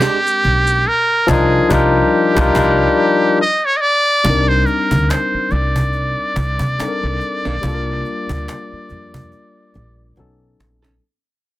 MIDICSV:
0, 0, Header, 1, 8, 480
1, 0, Start_track
1, 0, Key_signature, -3, "minor"
1, 0, Tempo, 845070
1, 491, Time_signature, 4, 2, 24, 8
1, 6585, End_track
2, 0, Start_track
2, 0, Title_t, "Muted trumpet"
2, 0, Program_c, 0, 59
2, 0, Note_on_c, 0, 67, 104
2, 499, Note_on_c, 0, 70, 95
2, 507, Note_off_c, 0, 67, 0
2, 735, Note_on_c, 0, 68, 87
2, 744, Note_off_c, 0, 70, 0
2, 976, Note_on_c, 0, 67, 80
2, 984, Note_off_c, 0, 68, 0
2, 1934, Note_off_c, 0, 67, 0
2, 1938, Note_on_c, 0, 75, 100
2, 2076, Note_on_c, 0, 73, 104
2, 2084, Note_off_c, 0, 75, 0
2, 2140, Note_on_c, 0, 75, 72
2, 2148, Note_off_c, 0, 73, 0
2, 2166, Note_on_c, 0, 74, 113
2, 2174, Note_off_c, 0, 75, 0
2, 2547, Note_on_c, 0, 72, 93
2, 2556, Note_off_c, 0, 74, 0
2, 2648, Note_on_c, 0, 70, 81
2, 2656, Note_off_c, 0, 72, 0
2, 2896, Note_on_c, 0, 72, 74
2, 2905, Note_off_c, 0, 70, 0
2, 3133, Note_on_c, 0, 74, 91
2, 3141, Note_off_c, 0, 72, 0
2, 5772, Note_off_c, 0, 74, 0
2, 6585, End_track
3, 0, Start_track
3, 0, Title_t, "Tine electric piano"
3, 0, Program_c, 1, 4
3, 0, Control_c, 1, 64, 127
3, 0, Note_on_c, 1, 56, 67
3, 0, Note_on_c, 1, 60, 66
3, 0, Note_on_c, 1, 62, 65
3, 0, Note_on_c, 1, 67, 63
3, 0, Note_on_c, 1, 70, 80
3, 468, Note_off_c, 1, 56, 0
3, 474, Note_off_c, 1, 60, 0
3, 478, Note_off_c, 1, 62, 0
3, 483, Note_off_c, 1, 67, 0
3, 486, Note_off_c, 1, 70, 0
3, 499, Control_c, 1, 64, 0
3, 596, Control_c, 1, 64, 127
3, 720, Note_on_c, 1, 53, 111
3, 730, Note_on_c, 1, 62, 113
3, 739, Note_on_c, 1, 63, 117
3, 747, Note_on_c, 1, 65, 99
3, 756, Note_on_c, 1, 70, 111
3, 893, Note_off_c, 1, 53, 0
3, 899, Note_off_c, 1, 62, 0
3, 905, Note_off_c, 1, 63, 0
3, 909, Note_off_c, 1, 65, 0
3, 914, Note_off_c, 1, 70, 0
3, 956, Note_on_c, 1, 55, 105
3, 963, Note_on_c, 1, 62, 101
3, 971, Note_on_c, 1, 63, 99
3, 982, Note_on_c, 1, 65, 87
3, 991, Note_on_c, 1, 70, 106
3, 1131, Note_off_c, 1, 55, 0
3, 1135, Note_off_c, 1, 62, 0
3, 1140, Note_off_c, 1, 63, 0
3, 1146, Note_off_c, 1, 65, 0
3, 1151, Note_off_c, 1, 70, 0
3, 1334, Note_on_c, 1, 55, 99
3, 1343, Note_on_c, 1, 62, 100
3, 1352, Note_on_c, 1, 63, 92
3, 1361, Note_on_c, 1, 65, 105
3, 1369, Note_on_c, 1, 70, 107
3, 1428, Note_off_c, 1, 55, 0
3, 1433, Note_off_c, 1, 62, 0
3, 1438, Note_off_c, 1, 63, 0
3, 1441, Note_on_c, 1, 55, 94
3, 1443, Note_off_c, 1, 65, 0
3, 1448, Note_off_c, 1, 70, 0
3, 1448, Note_on_c, 1, 62, 92
3, 1458, Note_on_c, 1, 63, 93
3, 1467, Note_on_c, 1, 65, 92
3, 1474, Note_on_c, 1, 70, 96
3, 1614, Note_off_c, 1, 55, 0
3, 1618, Note_off_c, 1, 62, 0
3, 1624, Note_off_c, 1, 63, 0
3, 1629, Note_off_c, 1, 65, 0
3, 1633, Note_off_c, 1, 70, 0
3, 1939, Control_c, 1, 64, 0
3, 2407, Note_on_c, 1, 55, 61
3, 2416, Note_on_c, 1, 60, 57
3, 2425, Note_on_c, 1, 62, 59
3, 2432, Note_on_c, 1, 63, 56
3, 2441, Note_on_c, 1, 70, 64
3, 2531, Control_c, 1, 64, 127
3, 3826, Note_off_c, 1, 55, 0
3, 3831, Note_off_c, 1, 60, 0
3, 3835, Note_off_c, 1, 62, 0
3, 3839, Note_off_c, 1, 63, 0
3, 3843, Note_off_c, 1, 70, 0
3, 3852, Note_on_c, 1, 55, 53
3, 3859, Note_on_c, 1, 60, 51
3, 3860, Note_on_c, 1, 62, 53
3, 3868, Note_on_c, 1, 63, 44
3, 3871, Note_on_c, 1, 69, 47
3, 3903, Note_off_c, 1, 69, 0
3, 3908, Note_on_c, 1, 70, 63
3, 4317, Note_off_c, 1, 55, 0
3, 4324, Note_on_c, 1, 55, 69
3, 4333, Note_off_c, 1, 62, 0
3, 4333, Note_on_c, 1, 58, 69
3, 4335, Note_off_c, 1, 60, 0
3, 4338, Control_c, 1, 64, 0
3, 4339, Note_on_c, 1, 62, 60
3, 4340, Note_off_c, 1, 63, 0
3, 4350, Note_on_c, 1, 65, 66
3, 4359, Note_on_c, 1, 69, 63
3, 4360, Note_off_c, 1, 70, 0
3, 4387, Note_off_c, 1, 69, 0
3, 4396, Note_on_c, 1, 70, 69
3, 4442, Control_c, 1, 64, 127
3, 5745, Note_off_c, 1, 55, 0
3, 5750, Note_off_c, 1, 58, 0
3, 5753, Note_off_c, 1, 62, 0
3, 5758, Note_off_c, 1, 65, 0
3, 5776, Note_on_c, 1, 54, 65
3, 5778, Control_c, 1, 64, 0
3, 5779, Note_on_c, 1, 59, 61
3, 5781, Note_off_c, 1, 70, 0
3, 5785, Note_on_c, 1, 61, 64
3, 5788, Note_on_c, 1, 63, 55
3, 5792, Note_on_c, 1, 69, 69
3, 5876, Control_c, 1, 64, 127
3, 6254, Note_off_c, 1, 54, 0
3, 6255, Note_off_c, 1, 59, 0
3, 6258, Note_off_c, 1, 61, 0
3, 6259, Control_c, 1, 64, 0
3, 6260, Note_off_c, 1, 63, 0
3, 6262, Note_off_c, 1, 69, 0
3, 6585, End_track
4, 0, Start_track
4, 0, Title_t, "Hollow-body jazz guitar"
4, 0, Program_c, 2, 26
4, 3, Note_on_c, 2, 56, 92
4, 9, Note_on_c, 2, 62, 99
4, 11, Note_on_c, 2, 67, 107
4, 98, Note_off_c, 2, 56, 0
4, 101, Note_off_c, 2, 62, 0
4, 102, Note_off_c, 2, 67, 0
4, 4233, Note_on_c, 2, 62, 63
4, 4239, Note_on_c, 2, 58, 50
4, 4242, Note_on_c, 2, 51, 50
4, 4285, Note_off_c, 2, 62, 0
4, 4288, Note_off_c, 2, 58, 0
4, 4289, Note_off_c, 2, 51, 0
4, 6148, Note_on_c, 2, 69, 44
4, 6153, Note_on_c, 2, 63, 43
4, 6158, Note_on_c, 2, 61, 42
4, 6202, Note_off_c, 2, 69, 0
4, 6205, Note_off_c, 2, 63, 0
4, 6207, Note_off_c, 2, 61, 0
4, 6585, End_track
5, 0, Start_track
5, 0, Title_t, "Upright bass"
5, 0, Program_c, 3, 32
5, 254, Note_on_c, 3, 35, 75
5, 473, Note_off_c, 3, 35, 0
5, 731, Note_on_c, 3, 36, 89
5, 900, Note_off_c, 3, 36, 0
5, 969, Note_on_c, 3, 36, 98
5, 1139, Note_off_c, 3, 36, 0
5, 1348, Note_on_c, 3, 36, 90
5, 1436, Note_off_c, 3, 36, 0
5, 1451, Note_on_c, 3, 36, 101
5, 1620, Note_off_c, 3, 36, 0
5, 2415, Note_on_c, 3, 36, 94
5, 2634, Note_off_c, 3, 36, 0
5, 2793, Note_on_c, 3, 38, 82
5, 2886, Note_off_c, 3, 38, 0
5, 3133, Note_on_c, 3, 36, 72
5, 3486, Note_off_c, 3, 36, 0
5, 3615, Note_on_c, 3, 36, 87
5, 3738, Note_off_c, 3, 36, 0
5, 3747, Note_on_c, 3, 48, 83
5, 3843, Note_off_c, 3, 48, 0
5, 3994, Note_on_c, 3, 36, 76
5, 4087, Note_off_c, 3, 36, 0
5, 4233, Note_on_c, 3, 35, 67
5, 4326, Note_off_c, 3, 35, 0
5, 4336, Note_on_c, 3, 36, 90
5, 4555, Note_off_c, 3, 36, 0
5, 4713, Note_on_c, 3, 38, 79
5, 4806, Note_off_c, 3, 38, 0
5, 5060, Note_on_c, 3, 41, 66
5, 5277, Note_off_c, 3, 41, 0
5, 5540, Note_on_c, 3, 34, 75
5, 5757, Note_off_c, 3, 34, 0
5, 5777, Note_on_c, 3, 35, 73
5, 5995, Note_off_c, 3, 35, 0
5, 6019, Note_on_c, 3, 34, 70
5, 6236, Note_off_c, 3, 34, 0
5, 6585, End_track
6, 0, Start_track
6, 0, Title_t, "Cajon"
6, 15, Note_on_c, 9, 38, 78
6, 18, Note_off_c, 9, 38, 0
6, 18, Note_on_c, 9, 38, 102
6, 75, Note_off_c, 9, 38, 0
6, 248, Note_on_c, 9, 38, 39
6, 305, Note_off_c, 9, 38, 0
6, 728, Note_on_c, 9, 36, 105
6, 736, Note_on_c, 9, 38, 94
6, 785, Note_off_c, 9, 36, 0
6, 792, Note_off_c, 9, 38, 0
6, 968, Note_on_c, 9, 36, 109
6, 974, Note_on_c, 9, 38, 103
6, 1025, Note_off_c, 9, 36, 0
6, 1031, Note_off_c, 9, 38, 0
6, 1344, Note_on_c, 9, 36, 122
6, 1350, Note_on_c, 9, 38, 107
6, 1401, Note_off_c, 9, 36, 0
6, 1407, Note_off_c, 9, 38, 0
6, 1448, Note_on_c, 9, 36, 115
6, 1454, Note_on_c, 9, 38, 94
6, 1505, Note_off_c, 9, 36, 0
6, 1511, Note_off_c, 9, 38, 0
6, 2412, Note_on_c, 9, 36, 112
6, 2468, Note_off_c, 9, 36, 0
6, 2650, Note_on_c, 9, 38, 42
6, 2707, Note_off_c, 9, 38, 0
6, 2789, Note_on_c, 9, 36, 80
6, 2846, Note_off_c, 9, 36, 0
6, 2898, Note_on_c, 9, 38, 68
6, 2902, Note_off_c, 9, 38, 0
6, 2902, Note_on_c, 9, 38, 96
6, 2959, Note_off_c, 9, 38, 0
6, 3128, Note_on_c, 9, 38, 32
6, 3185, Note_off_c, 9, 38, 0
6, 3270, Note_on_c, 9, 36, 74
6, 3327, Note_off_c, 9, 36, 0
6, 3369, Note_on_c, 9, 38, 33
6, 3426, Note_off_c, 9, 38, 0
6, 3613, Note_on_c, 9, 36, 86
6, 3670, Note_off_c, 9, 36, 0
6, 3745, Note_on_c, 9, 36, 84
6, 3802, Note_off_c, 9, 36, 0
6, 3860, Note_on_c, 9, 38, 60
6, 3863, Note_off_c, 9, 38, 0
6, 3863, Note_on_c, 9, 38, 90
6, 3920, Note_off_c, 9, 38, 0
6, 4090, Note_on_c, 9, 38, 34
6, 4147, Note_off_c, 9, 38, 0
6, 4334, Note_on_c, 9, 36, 101
6, 4391, Note_off_c, 9, 36, 0
6, 4572, Note_on_c, 9, 38, 37
6, 4629, Note_off_c, 9, 38, 0
6, 4711, Note_on_c, 9, 36, 74
6, 4768, Note_off_c, 9, 36, 0
6, 4819, Note_on_c, 9, 38, 75
6, 4822, Note_off_c, 9, 38, 0
6, 4822, Note_on_c, 9, 38, 84
6, 4879, Note_off_c, 9, 38, 0
6, 5051, Note_on_c, 9, 38, 32
6, 5108, Note_off_c, 9, 38, 0
6, 5192, Note_on_c, 9, 36, 73
6, 5249, Note_off_c, 9, 36, 0
6, 5293, Note_on_c, 9, 38, 32
6, 5350, Note_off_c, 9, 38, 0
6, 5532, Note_on_c, 9, 38, 33
6, 5589, Note_off_c, 9, 38, 0
6, 5770, Note_on_c, 9, 38, 32
6, 5827, Note_off_c, 9, 38, 0
6, 6023, Note_on_c, 9, 38, 80
6, 6080, Note_off_c, 9, 38, 0
6, 6159, Note_on_c, 9, 38, 73
6, 6216, Note_off_c, 9, 38, 0
6, 6585, End_track
7, 0, Start_track
7, 0, Title_t, "Muted upright bass strokes"
7, 3033, Note_on_c, 9, 29, 41
7, 3089, Note_off_c, 9, 29, 0
7, 3858, Note_on_c, 9, 29, 36
7, 3915, Note_off_c, 9, 29, 0
7, 4955, Note_on_c, 9, 29, 38
7, 5012, Note_off_c, 9, 29, 0
7, 6585, End_track
8, 0, Start_track
8, 0, Title_t, "Drums"
8, 13, Note_on_c, 9, 26, 58
8, 13, Note_on_c, 9, 82, 56
8, 70, Note_off_c, 9, 26, 0
8, 70, Note_off_c, 9, 82, 0
8, 153, Note_on_c, 9, 82, 53
8, 210, Note_off_c, 9, 82, 0
8, 381, Note_on_c, 9, 82, 46
8, 438, Note_off_c, 9, 82, 0
8, 6585, End_track
0, 0, End_of_file